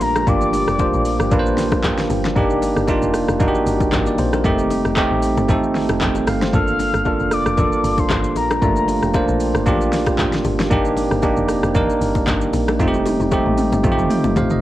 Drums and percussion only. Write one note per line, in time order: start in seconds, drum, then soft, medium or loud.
0.01 open hi-hat medium
0.01 high bongo medium
0.01 shaker medium
0.16 cross-stick loud
0.16 low bongo medium
0.16 shaker soft
0.27 kick loud
0.27 low conga medium
0.27 shaker medium
0.41 shaker medium
0.53 open hi-hat medium
0.53 low bongo medium
0.53 shaker loud
0.68 cross-stick medium
0.68 shaker soft
0.79 kick loud
0.79 high bongo medium
0.79 shaker medium
0.93 shaker medium
1.05 open hi-hat medium
1.05 shaker loud
1.20 cross-stick loud
1.20 shaker medium
1.31 kick loud
1.31 low conga medium
1.31 shaker medium
1.46 shaker medium
1.58 snare medium
1.58 open hi-hat medium
1.58 shaker loud
1.72 kick loud
1.72 cross-stick loud
1.72 low bongo medium
1.72 shaker medium
1.84 kick loud
1.84 clap loud
1.84 high bongo medium
1.84 low conga medium
1.84 shaker medium
1.98 snare medium
1.98 shaker medium
2.10 open hi-hat medium
2.10 high bongo medium
2.10 shaker medium
2.24 snare medium
2.24 low bongo medium
2.24 shaker soft
2.36 kick loud
2.36 low conga medium
2.36 shaker medium
2.50 shaker medium
2.62 open hi-hat medium
2.62 low bongo medium
2.62 shaker loud
2.76 cross-stick medium
2.76 shaker soft
2.88 kick loud
2.88 high bongo medium
2.88 shaker medium
3.02 shaker medium
3.14 cross-stick medium
3.14 open hi-hat medium
3.14 shaker loud
3.28 cross-stick loud
3.28 shaker medium
3.40 kick loud
3.40 low conga medium
3.40 shaker medium
3.55 shaker medium
3.67 open hi-hat medium
3.67 shaker loud
3.80 kick loud
3.80 low bongo medium
3.80 shaker medium
3.92 kick loud
3.92 clap loud
3.92 high bongo medium
3.92 low conga medium
3.92 shaker medium
4.06 shaker medium
4.18 open hi-hat medium
4.18 high bongo medium
4.18 shaker medium
4.33 cross-stick loud
4.33 low bongo medium
4.33 shaker soft
4.44 kick loud
4.44 low conga medium
4.44 shaker medium
4.59 shaker medium
4.70 open hi-hat medium
4.70 low bongo medium
4.70 shaker loud
4.85 cross-stick medium
4.85 shaker soft
4.96 kick loud
4.96 clap medium
4.96 high bongo medium
4.96 shaker medium
5.22 open hi-hat medium
5.22 shaker loud
5.37 low bongo medium
5.37 shaker medium
5.49 kick loud
5.49 low conga medium
5.49 shaker medium
5.64 shaker medium
5.75 snare medium
5.75 open hi-hat medium
5.75 shaker loud
5.89 cross-stick loud
5.89 low bongo medium
5.89 shaker medium
6.01 kick loud
6.01 clap loud
6.01 high bongo medium
6.01 low conga medium
6.01 shaker medium
6.15 high bongo medium
6.15 shaker medium
6.27 cross-stick loud
6.27 open hi-hat medium
6.27 high bongo medium
6.27 shaker medium
6.42 snare medium
6.42 low bongo medium
6.42 shaker soft
6.53 kick loud
6.53 low conga medium
6.53 shaker medium
6.68 shaker medium
6.79 open hi-hat medium
6.79 low bongo medium
6.79 shaker loud
6.94 cross-stick medium
6.94 shaker soft
7.05 kick loud
7.05 high bongo medium
7.05 shaker medium
7.20 shaker medium
7.31 cross-stick medium
7.31 open hi-hat medium
7.31 shaker loud
7.46 cross-stick loud
7.46 shaker medium
7.57 kick loud
7.57 low conga medium
7.57 shaker medium
7.72 shaker medium
7.84 open hi-hat medium
7.84 shaker loud
7.98 kick loud
7.98 low bongo medium
7.98 shaker medium
8.10 kick loud
8.10 clap loud
8.10 high bongo medium
8.10 low conga medium
8.10 shaker medium
8.24 shaker medium
8.36 open hi-hat medium
8.36 high bongo medium
8.36 shaker medium
8.50 cross-stick loud
8.50 low bongo medium
8.50 shaker soft
8.62 kick loud
8.62 low conga medium
8.62 shaker medium
8.76 shaker medium
8.88 open hi-hat medium
8.88 low bongo medium
8.88 shaker loud
9.03 cross-stick medium
9.03 shaker soft
9.14 kick loud
9.14 high bongo medium
9.14 shaker medium
9.28 shaker medium
9.40 open hi-hat medium
9.40 shaker loud
9.55 cross-stick loud
9.55 shaker medium
9.66 kick loud
9.66 low conga medium
9.66 shaker medium
9.81 shaker medium
9.93 snare medium
9.93 open hi-hat medium
9.93 shaker loud
10.06 kick loud
10.06 cross-stick loud
10.06 low bongo medium
10.06 shaker medium
10.19 kick loud
10.19 clap loud
10.19 high bongo medium
10.19 low conga medium
10.19 shaker medium
10.33 snare medium
10.33 shaker medium
10.45 open hi-hat medium
10.45 high bongo medium
10.45 shaker medium
10.59 snare medium
10.59 low bongo medium
10.59 shaker soft
10.71 kick loud
10.71 low conga medium
10.71 shaker medium
10.85 shaker medium
10.97 open hi-hat medium
10.97 low bongo medium
10.97 shaker loud
11.11 cross-stick medium
11.11 shaker soft
11.22 kick loud
11.22 high bongo medium
11.22 shaker medium
11.37 shaker medium
11.49 cross-stick medium
11.49 open hi-hat medium
11.49 shaker loud
11.63 cross-stick loud
11.63 shaker medium
11.75 kick loud
11.75 low conga medium
11.75 shaker medium
11.90 shaker medium
12.02 open hi-hat medium
12.02 shaker loud
12.15 kick loud
12.15 low bongo medium
12.15 shaker medium
12.27 kick loud
12.27 clap loud
12.27 high bongo medium
12.27 low conga medium
12.27 shaker medium
12.41 shaker medium
12.53 open hi-hat medium
12.53 high bongo medium
12.53 shaker medium
12.68 cross-stick loud
12.68 low bongo medium
12.68 shaker soft
12.79 kick loud
12.79 high tom medium
12.79 low conga medium
12.79 shaker medium
12.94 high tom medium
12.94 shaker medium
13.05 open hi-hat medium
13.05 high tom medium
13.05 low bongo medium
13.05 shaker loud
13.20 high tom medium
13.20 shaker soft
13.31 kick loud
13.31 mid tom medium
13.31 high bongo medium
13.31 shaker medium
13.46 mid tom medium
13.57 open hi-hat medium
13.57 mid tom medium
13.57 shaker loud
13.72 mid tom medium
13.72 low bongo medium
13.72 shaker medium
13.84 kick loud
13.84 mid tom medium
13.84 low conga medium
13.84 shaker medium
13.98 mid tom medium
13.98 shaker medium
14.10 mid tom loud
14.10 open hi-hat medium
14.10 shaker loud
14.24 mid tom medium
14.24 low bongo medium
14.24 shaker medium
14.36 kick loud
14.36 floor tom loud
14.36 high bongo medium
14.36 low conga medium
14.36 shaker medium
14.50 floor tom medium
14.50 shaker medium